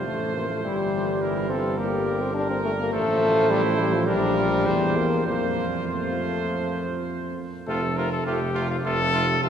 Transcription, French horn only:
0.06 0.35 A3 medium
0.36 0.50 A#3 medium
0.51 0.64 A3 medium
0.64 1.48 G3 medium
1.49 1.80 C4 medium
1.78 2.23 A#3 medium
2.21 2.34 C4 medium
2.34 2.49 D4 medium
2.50 2.64 C4 medium
2.65 2.71 A3 medium
2.80 2.95 A#3 medium
2.93 3.52 A3 loud
3.50 3.64 G3 loud
3.64 3.81 A3 medium
3.79 3.95 G3 loud
3.93 4.09 F3 medium
4.07 4.98 G3 loud
4.97 5.26 A#3 medium
5.27 5.65 A#3 medium
5.86 7.03 A3 medium
7.68 7.81 A3 medium
7.98 8.11 A3 medium
8.26 8.39 A3 medium
8.55 8.68 A3 medium
8.85 8.98 A3 medium
9.14 9.27 A3 medium
9.42 9.49 A3 medium

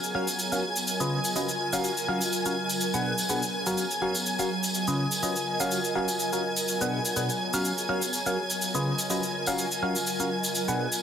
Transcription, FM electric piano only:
0.15 0.28 F#3 medium
0.15 0.28 C#4 medium
0.15 0.28 F#4 medium
0.15 0.28 A#4 medium
0.15 0.28 F5 medium
0.52 0.63 F#3 medium
0.52 0.63 C#4 medium
0.52 0.63 F#4 medium
0.52 0.63 A#4 medium
0.52 0.63 F5 medium
1.00 1.19 C#3 medium
1.00 1.19 C#4 medium
1.00 1.19 F4 medium
1.00 1.19 B4 medium
1.00 1.19 D#5 medium
1.36 1.49 F#3 medium
1.36 1.49 C#4 medium
1.36 1.49 F4 medium
1.36 1.49 B4 medium
1.36 1.49 D#5 medium
1.73 1.92 F#3 medium
1.73 1.92 C#4 medium
1.73 1.92 F#4 medium
1.73 1.92 A#4 medium
1.73 1.92 F5 medium
2.08 2.21 F#3 medium
2.08 2.21 C#4 medium
2.08 2.21 F#4 medium
2.08 2.21 A#4 medium
2.08 2.21 F5 medium
2.46 2.55 C#4 medium
2.46 2.55 F#4 medium
2.46 2.55 A#4 medium
2.46 2.55 F5 medium
2.94 3.13 B2 medium
2.94 3.13 D4 medium
2.94 3.13 G#4 medium
2.94 3.13 B4 medium
2.94 3.13 F#5 medium
3.29 3.42 B2 medium
3.29 3.42 D4 medium
3.29 3.42 G#4 medium
3.29 3.42 B4 medium
3.29 3.42 F#5 medium
3.66 3.85 F#3 medium
3.66 3.85 C#4 medium
3.66 3.85 F#4 medium
3.66 3.85 A#4 medium
3.66 3.85 F5 medium
4.02 4.15 F#3 medium
4.02 4.15 C#4 medium
4.02 4.15 F#4 medium
4.02 4.15 A#4 medium
4.02 4.15 F5 medium
4.39 4.50 F#3 medium
4.39 4.50 C#4 medium
4.39 4.50 F#4 medium
4.39 4.50 A#4 medium
4.39 4.50 F5 medium
4.88 5.06 C#3 medium
4.88 5.06 C#4 medium
4.88 5.06 F4 medium
4.88 5.06 B4 medium
4.88 5.06 D#5 medium
5.23 5.36 F#3 medium
5.23 5.36 C#4 medium
5.23 5.36 F4 medium
5.23 5.36 B4 medium
5.23 5.36 D#5 medium
5.60 5.79 F#3 medium
5.60 5.79 C#4 medium
5.60 5.79 F#4 medium
5.60 5.79 A#4 medium
5.60 5.79 F5 medium
5.95 6.08 F#3 medium
5.95 6.08 C#4 medium
5.95 6.08 F#4 medium
5.95 6.08 A#4 medium
5.95 6.08 F5 medium
6.33 6.43 C#4 medium
6.33 6.43 F#4 medium
6.33 6.43 A#4 medium
6.33 6.43 F5 medium
6.81 7.00 B2 medium
6.81 7.00 D4 medium
6.81 7.00 G#4 medium
6.81 7.00 B4 medium
6.81 7.00 F#5 medium
7.16 7.29 B2 medium
7.16 7.29 D4 medium
7.16 7.29 G#4 medium
7.16 7.29 B4 medium
7.16 7.29 F#5 medium
7.54 7.72 F#3 medium
7.54 7.72 C#4 medium
7.54 7.72 F#4 medium
7.54 7.72 A#4 medium
7.54 7.72 F5 medium
7.89 8.02 F#3 medium
7.89 8.02 C#4 medium
7.89 8.02 F#4 medium
7.89 8.02 A#4 medium
7.89 8.02 F5 medium
8.26 8.37 F#3 medium
8.26 8.37 C#4 medium
8.26 8.37 F#4 medium
8.26 8.37 A#4 medium
8.26 8.37 F5 medium
8.75 8.93 C#3 medium
8.75 8.93 C#4 medium
8.75 8.93 F4 medium
8.75 8.93 B4 medium
8.75 8.93 D#5 medium
9.10 9.23 F#3 medium
9.10 9.23 C#4 medium
9.10 9.23 F4 medium
9.10 9.23 B4 medium
9.10 9.23 D#5 medium
9.47 9.66 F#3 medium
9.47 9.66 C#4 medium
9.47 9.66 F#4 medium
9.47 9.66 A#4 medium
9.47 9.66 F5 medium
9.82 9.95 F#3 medium
9.82 9.95 C#4 medium
9.82 9.95 F#4 medium
9.82 9.95 A#4 medium
9.82 9.95 F5 medium
10.20 10.30 C#4 medium
10.20 10.30 F#4 medium
10.20 10.30 A#4 medium
10.20 10.30 F5 medium
10.68 10.87 B2 medium
10.68 10.87 D4 medium
10.68 10.87 G#4 medium
10.68 10.87 B4 medium
10.68 10.87 F#5 medium

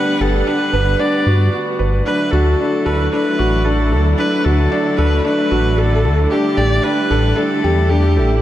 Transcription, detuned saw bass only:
0.21 0.43 G1 loud
0.73 0.96 G1 loud
1.27 1.49 G2 medium
1.80 2.02 G1 loud
2.33 2.55 D2 loud
2.87 3.09 D2 loud
3.40 3.94 A1 loud
3.93 4.15 D2 loud
4.46 4.68 D2 medium
4.99 5.21 D2 loud
5.52 6.06 A1 loud
6.05 6.27 D2 loud
6.58 6.80 A1 loud
7.11 7.33 A1 loud
7.65 8.19 E2 loud
8.18 8.40 A1 loud

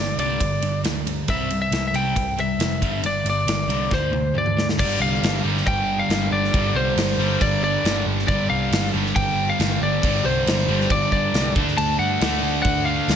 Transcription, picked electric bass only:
0.00 0.15 G1 medium
0.17 0.36 C2 medium
0.40 0.59 G1 loud
0.61 0.81 G1 medium
0.83 1.22 D2 medium
1.28 1.66 C2 medium
1.71 1.91 C2 medium
1.93 2.12 C2 medium
2.16 2.54 C2 loud
2.59 2.82 F1 medium
2.82 3.01 G1 medium
3.03 3.22 G1 medium
3.24 3.44 G1 medium
3.46 3.66 G1 medium
3.67 3.87 C2 medium
3.91 4.10 D2 medium
4.11 4.31 D2 loud
4.34 4.81 D2 medium
4.79 4.96 G1 medium
5.00 5.18 C2 loud
5.22 5.40 G1 medium
5.44 5.61 G1 medium
5.66 6.01 G1 loud
6.09 6.27 G1 medium
6.31 6.49 G1 loud
6.53 6.71 G1 medium
6.74 6.92 C2 medium
6.96 7.14 G1 medium
7.18 7.36 G1 loud
7.41 7.76 G1 loud
7.84 8.02 G1 loud
8.06 8.24 G1 medium
8.29 8.46 G1 medium
8.50 8.67 C2 loud
8.71 8.89 G1 medium
8.94 9.11 G1 loud
9.16 9.50 G1 loud
9.59 9.77 G1 medium
9.81 9.99 G1 medium
10.03 10.20 G1 loud
10.25 10.42 C2 medium
10.47 10.64 G1 medium
10.68 10.86 G1 medium
10.90 11.25 G1 medium
11.33 11.51 C2 medium
11.56 11.73 D2 medium
11.77 11.95 D2 loud
11.98 12.16 G2 medium
12.21 12.38 D2 medium
12.43 12.60 D2 medium
12.65 12.99 D2 medium
13.08 13.16 D2 medium

